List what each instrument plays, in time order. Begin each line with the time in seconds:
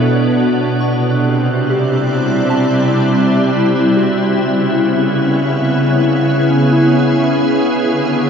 Already playing: cello section B2, ambient pad B2 B3 D4 F#4 C#5, synth bell A5, synth texture F#6
0.01 synth bell A4
0.80 synth bell C#6
0.98 ambient pad C3
1.02 cello section C3
1.18 ambient pad C4
1.52 ambient pad G3 D5
1.70 synth bell G4
1.90 ambient pad E4
2.50 synth bell A5
3.97 synth bell F#4
4.42 ambient pad C#3, cello section C#3
4.72 ambient pad B3
5.03 ambient pad C#5
5.99 ambient pad G#4
6.72 synth bell E4
7.88 ambient pad D3, cello section D3, synth texture E6